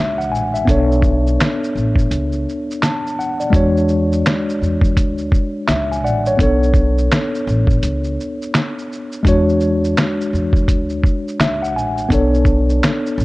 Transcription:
Already playing: C#2 G#3 D4 F#4 C#5 E5
0.18 F#5, shaker
0.32 A1 G#5, shaker
0.54 E5, shaker
0.65 B1 B3 D4 A4, kick, closed hi-hat, shaker
0.71 C#5
0.92 shaker
1.02 kick, shaker
1.27 shaker
1.41 finger snap, snare, closed hi-hat, shaker
1.64 shaker
1.76 A1, shaker
1.96 kick, shaker
2.11 C#2, closed hi-hat, shaker
2.32 shaker
2.49 shaker
2.71 shaker
2.82 A5, finger snap, snare, closed hi-hat, shaker
3.07 shaker
3.19 F#5, shaker
3.40 D5, shaker
3.50 E2 G#3 D4 F#4, kick
3.55 C#5, closed hi-hat, shaker
3.77 shaker
3.89 shaker
4.12 shaker
4.26 finger snap, snare, closed hi-hat, shaker
4.49 shaker
4.61 E2, shaker
4.81 kick, shaker
4.97 D2, kick, closed hi-hat, shaker
5.18 shaker
5.32 kick, shaker
5.68 C#2 E5, finger snap, snare, closed hi-hat, shaker
5.91 G#5, shaker
6.04 A1 D5 F#5, shaker
6.26 C#5, shaker
6.37 B1 B3 D4 A4, kick, closed hi-hat, shaker
6.43 C#5
6.63 shaker
6.74 kick, shaker
6.98 shaker
7.12 finger snap, snare, closed hi-hat, shaker
7.35 shaker
7.47 A1, shaker
7.67 kick, shaker
7.83 C#2, closed hi-hat, shaker
8.04 shaker
8.20 shaker
8.42 shaker
8.54 finger snap, snare, closed hi-hat, shaker
8.79 shaker
8.92 shaker
9.12 shaker
9.23 E2 G#3 D4 F#4, kick, closed hi-hat, shaker
9.28 C#5
9.49 shaker
9.60 shaker
9.84 shaker
9.97 finger snap, snare, closed hi-hat, shaker
10.21 shaker
10.33 E2, shaker
10.53 kick, shaker
10.68 D2, kick, closed hi-hat, shaker
10.89 shaker
11.03 kick, shaker
11.28 shaker
11.39 C#2 E5, finger snap, snare, closed hi-hat, shaker
11.62 F#5, shaker
11.75 A1 G#5, shaker
11.97 shaker
12.09 B1 B3 D4 A4, kick, closed hi-hat, shaker
12.14 C#5
12.34 shaker
12.45 kick, shaker
12.70 shaker
12.83 finger snap, snare, closed hi-hat, shaker
13.06 shaker
13.18 A1, shaker

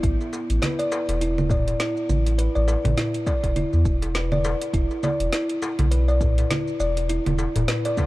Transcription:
0.03 A1 E4, kick, closed hi-hat, shaker
0.21 darbuka tek, shaker
0.33 darbuka tek, shaker
0.50 A1, closed hi-hat, shaker
0.62 B4, snare, closed hi-hat, low conga, shaker
0.79 D5, closed hi-hat, shaker
0.92 B4, darbuka tek, shaker
1.09 E1, closed hi-hat, darbuka ka, shaker
1.21 E4, closed hi-hat, shaker
1.38 low conga, shaker
1.49 D5, kick, darbuka dum, shaker
1.68 closed hi-hat, darbuka ka, shaker
1.80 E4, snare, closed hi-hat, shaker
1.97 shaker
2.09 A1, low conga, shaker
2.26 closed hi-hat, darbuka ka, shaker
2.38 B4, closed hi-hat, shaker
2.55 A1 D5, shaker
2.68 B4, darbuka tek, shaker
2.85 A1, closed hi-hat, darbuka dum, low conga, shaker
2.97 E4, snare, closed hi-hat, shaker
3.14 closed hi-hat, shaker
3.27 D5, kick, darbuka tek, shaker
3.43 E1, kick, closed hi-hat, darbuka ka, shaker
3.56 E4, closed hi-hat, low conga, shaker
3.73 E2, darbuka ka, shaker
3.85 E1, kick, shaker
4.02 closed hi-hat, darbuka ka, shaker
4.15 B4, snare, closed hi-hat, shaker
4.32 D5, low conga, shaker
4.44 B4, darbuka tek, shaker
4.62 closed hi-hat, darbuka ka, shaker
4.73 E1 E4, kick, closed hi-hat, shaker
4.91 darbuka tek, shaker
5.03 D5, darbuka tek, low conga, shaker
5.20 E1, closed hi-hat, shaker
5.33 E4, snare, closed hi-hat, shaker
5.50 closed hi-hat, shaker
5.62 darbuka tek, shaker
5.79 B1, closed hi-hat, darbuka ka, low conga, shaker
5.91 B4, closed hi-hat, shaker
6.08 D5, shaker
6.21 B4, kick, darbuka dum, shaker
6.38 closed hi-hat, darbuka ka, shaker
6.51 E4, snare, closed hi-hat, low conga, shaker
6.68 shaker
6.80 E1 D5, shaker
6.97 closed hi-hat, darbuka ka, shaker
7.09 E4, closed hi-hat, shaker
7.26 E1, closed hi-hat, darbuka tek, low conga, shaker
7.38 darbuka tek, shaker
7.56 E1, closed hi-hat, darbuka dum, shaker
7.68 B4, snare, closed hi-hat, shaker
7.85 D5, closed hi-hat, darbuka tek, shaker
7.97 B4, kick, darbuka tek, low conga, shaker

